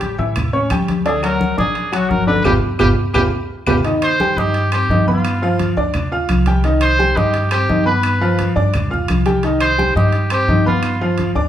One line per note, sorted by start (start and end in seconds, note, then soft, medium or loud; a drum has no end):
0.00 0.13 A1 medium
0.00 0.12 G3 medium
0.00 0.12 G4 medium
0.00 0.19 G4 medium
0.00 0.12 G5 medium
0.00 high conga medium
0.00 high timbale medium
0.18 0.67 A2 loud
0.18 0.47 E3 medium
0.18 0.47 E4 medium
0.18 0.47 E5 medium
0.18 high conga soft
0.36 high conga soft
0.36 low conga medium
0.36 high timbale medium
0.36 claves medium
0.53 0.67 C#4 medium
0.53 0.68 C#5 medium
0.53 0.68 C#6 medium
0.53 high conga soft
0.70 1.52 D2 medium
0.70 0.99 G3 medium
0.70 0.99 G4 medium
0.70 1.00 G5 medium
0.70 high conga medium
0.70 high timbale loud
0.70 claves medium
0.88 high conga medium
0.88 high timbale medium
1.05 1.20 D3 medium
1.05 1.20 D4 medium
1.05 1.22 G#4 medium
1.05 1.20 D5 medium
1.05 high timbale medium
1.22 1.51 F#3 medium
1.22 1.51 F#4 medium
1.22 1.56 A#4 medium
1.22 1.52 F#5 medium
1.22 high conga soft
1.22 high timbale medium
1.22 claves medium
1.41 high conga loud
1.57 2.07 A#1 loud
1.57 1.86 D4 medium
1.57 1.91 G#4 loud
1.57 1.87 D5 medium
1.57 1.87 D6 medium
1.57 high conga medium
1.75 high conga soft
1.75 high timbale medium
1.92 2.21 F#3 medium
1.92 2.21 F#4 medium
1.92 2.11 F#4 medium
1.92 2.21 F#5 medium
1.92 high conga soft
1.92 high timbale loud
1.92 claves medium
2.10 2.43 G1 medium
2.10 2.27 A#4 loud
2.10 high conga medium
2.27 2.42 D3 medium
2.27 2.42 D4 medium
2.27 2.44 B4 medium
2.27 2.42 D5 medium
2.27 high conga medium
2.44 2.58 G1 loud
2.44 2.56 F4 loud
2.44 2.56 G4 loud
2.44 2.53 G4 loud
2.44 2.56 B4 loud
2.44 low conga medium
2.44 high timbale medium
2.44 claves medium
2.79 2.93 G1 loud
2.79 2.91 F4 medium
2.79 2.88 G4 loud
2.79 2.91 G4 loud
2.79 2.91 B4 loud
2.79 low conga loud
2.79 high timbale loud
2.79 claves loud
3.13 3.28 G1 loud
3.13 3.26 F4 medium
3.13 3.22 G4 loud
3.13 3.26 G4 loud
3.13 3.26 B4 loud
3.13 low conga medium
3.13 high timbale medium
3.13 claves loud
3.67 3.80 G1 loud
3.67 3.78 F4 medium
3.67 3.75 G4 medium
3.67 3.78 G4 loud
3.67 3.78 B4 loud
3.67 low conga loud
3.67 high timbale loud
3.67 claves loud
3.85 4.13 D#3 medium
3.85 4.13 D#4 medium
3.85 4.13 D#5 medium
3.85 high timbale medium
4.02 4.40 C5 loud
4.02 high conga soft
4.02 high timbale medium
4.02 claves medium
4.20 4.34 G3 medium
4.20 4.34 G4 medium
4.20 4.35 G5 medium
4.20 high conga loud
4.37 4.85 G2 loud
4.37 4.66 D#4 medium
4.37 4.72 G4 loud
4.37 4.66 D#5 medium
4.37 4.66 D#6 medium
4.37 high conga medium
4.54 high conga soft
4.54 high timbale medium
4.72 4.87 C4 medium
4.72 5.05 G4 loud
4.72 4.87 C5 medium
4.72 4.87 C6 medium
4.72 high conga soft
4.72 high timbale medium
4.72 claves medium
4.89 5.71 G2 medium
4.89 5.04 D#3 medium
4.89 5.04 D#4 medium
4.89 5.04 D#5 medium
4.89 high conga medium
5.07 5.36 B3 medium
5.07 5.73 F4 medium
5.07 5.36 B4 medium
5.07 5.36 B5 medium
5.07 high conga medium
5.24 high conga soft
5.24 high timbale medium
5.24 claves medium
5.42 5.71 F3 medium
5.42 5.71 F4 medium
5.42 5.71 F5 medium
5.42 high conga soft
5.59 high conga medium
5.59 high timbale medium
5.77 6.25 D2 loud
5.77 6.06 D4 medium
5.77 6.06 D5 medium
5.77 6.06 D6 medium
5.77 high conga soft
5.94 high conga soft
5.94 low conga medium
5.94 high timbale medium
5.94 claves medium
6.12 6.40 F4 medium
6.12 6.41 F5 medium
6.12 6.41 F6 medium
6.12 high conga soft
6.29 7.11 C2 medium
6.29 high conga loud
6.29 high timbale medium
6.29 claves medium
6.46 6.61 G3 medium
6.46 6.61 G4 medium
6.46 6.61 G5 medium
6.46 high conga medium
6.46 high timbale medium
6.64 6.93 D#3 medium
6.64 6.93 D#4 medium
6.64 6.93 D#5 medium
6.64 high conga soft
6.64 high timbale medium
6.81 7.18 C5 loud
6.81 high conga soft
6.81 high timbale medium
6.81 claves medium
6.99 7.13 G3 medium
6.99 7.13 G4 medium
6.99 7.13 G5 medium
6.99 high conga medium
7.16 7.65 G2 loud
7.16 7.45 D#4 medium
7.16 7.51 G4 loud
7.16 7.45 D#5 medium
7.16 7.45 D#6 medium
7.16 high conga medium
7.34 high conga soft
7.34 high timbale medium
7.51 7.66 C4 medium
7.51 7.84 G4 loud
7.51 7.66 C5 medium
7.51 7.66 C6 medium
7.51 high conga soft
7.51 high timbale loud
7.51 claves medium
7.69 8.50 G2 medium
7.69 7.83 D#3 medium
7.69 7.83 D#4 medium
7.69 7.84 D#5 medium
7.69 high conga medium
7.85 8.14 B3 medium
7.85 8.14 B4 medium
7.85 8.52 B4 medium
7.85 8.15 B5 medium
8.03 high conga soft
8.03 high timbale medium
8.03 claves medium
8.21 8.50 F3 medium
8.21 8.50 F4 medium
8.21 8.50 F5 medium
8.21 high conga soft
8.39 high conga medium
8.39 high timbale medium
8.56 9.05 G2 medium
8.56 8.84 D4 medium
8.56 8.85 D5 medium
8.56 8.85 D6 medium
8.56 high conga soft
8.74 high conga soft
8.74 low conga medium
8.74 high timbale medium
8.74 claves medium
8.90 9.19 F4 medium
8.90 9.19 F5 medium
8.90 9.20 F6 medium
8.90 high conga soft
8.90 low conga medium
9.08 9.90 C2 medium
9.08 high conga medium
9.08 high timbale medium
9.08 claves medium
9.26 9.40 G3 medium
9.26 9.40 G4 medium
9.26 9.40 G5 medium
9.26 high conga medium
9.26 high timbale medium
9.43 9.72 D#3 medium
9.43 9.72 D#4 medium
9.43 9.72 D#5 medium
9.43 high conga soft
9.43 high timbale medium
9.60 9.93 C5 loud
9.60 high conga soft
9.60 high timbale medium
9.60 claves medium
9.78 9.92 G3 medium
9.78 9.92 G4 medium
9.78 9.93 G5 medium
9.78 high conga loud
9.95 10.44 G2 medium
9.95 10.24 D#4 medium
9.95 10.29 G4 medium
9.95 10.24 D#5 medium
9.95 10.25 D#6 medium
9.95 high conga medium
10.12 high conga soft
10.12 high timbale medium
10.30 10.45 C4 medium
10.30 10.64 G4 loud
10.30 10.45 C5 medium
10.30 10.45 C6 medium
10.30 high conga soft
10.30 high timbale loud
10.30 claves medium
10.48 11.29 G2 medium
10.48 10.62 D#3 medium
10.48 10.63 D#4 medium
10.48 10.63 D#5 medium
10.48 high conga medium
10.66 10.94 B3 medium
10.66 11.32 F4 medium
10.66 10.94 B4 medium
10.66 10.94 B5 medium
10.66 high conga medium
10.83 high conga soft
10.83 high timbale medium
10.83 claves medium
11.01 11.29 F3 medium
11.01 11.29 F4 medium
11.01 11.29 F5 medium
11.01 high conga soft
11.18 high conga medium
11.18 high timbale medium
11.35 11.49 D2 medium
11.35 11.49 D4 medium
11.35 11.49 D5 medium
11.35 11.49 D6 medium
11.35 high conga soft